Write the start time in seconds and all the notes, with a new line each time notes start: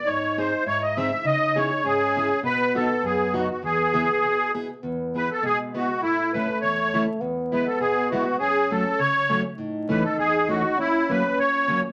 0.05 G#2 D#4 C#5
0.37 C4 D#4 G#4 C5
0.64 G#2 E4 C#5
0.82 D#5
0.97 C4 D#4 G#4 E5
1.24 C#3 D#4 D#5
1.56 C#4 E4 G#4 C#5
1.83 G#2 C#4 G#4
2.17 C#4 E4 G#4
2.43 B2 B3 B4
2.75 B3 D#4 F#4 A4
3.03 F#2 G#4
3.34 B3 D#4 F#4
3.50 F#4
3.63 E2 B3 G#4
3.94 B3 E4 G#4
4.22 B2
4.55 B3 E4 G#4
4.82 E2 B3
5.15 B3 E4 G#4 B4
5.32 A4
5.43 B2 G#3 G#4
5.75 B3 E4 F#4 G#4
6.02 A2 A3 E4
6.33 A3 C#4 E4 B4
6.61 E2 C#5
6.94 A3 C#4 E4
7.21 E2 B3
7.52 G#3 B3 E4 B4
7.67 A4
7.80 B2 G#4
8.10 G#3 B3 E4 F#4
8.39 F#2 C#4 G#4
8.71 F#3 A3 C#4 A4
8.99 C#3 C#5
9.29 F#3 A3 C#4
9.57 A2 D#4
9.89 E3 A3 C#4 B4
10.04 A4
10.18 E2 G#4
10.48 E3 A3 C#4 F#4
10.77 A#2 C#4 E4
11.09 F#3 A#3 C#4 B4
11.38 A#2 C#5
11.68 F#3 A#3 C#4